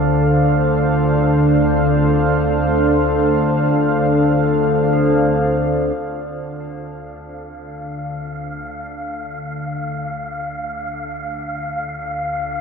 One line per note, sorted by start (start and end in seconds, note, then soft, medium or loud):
0.00 5.98 D2 medium
0.00 5.98 D3 medium
0.00 12.61 D4 medium
0.00 12.61 A4 medium
0.00 10.03 C5 medium
0.00 12.61 F5 medium
4.93 11.60 D4 medium
5.99 12.61 D2 medium
5.99 12.61 D3 medium
5.99 12.61 F5 medium
6.96 12.61 D5 medium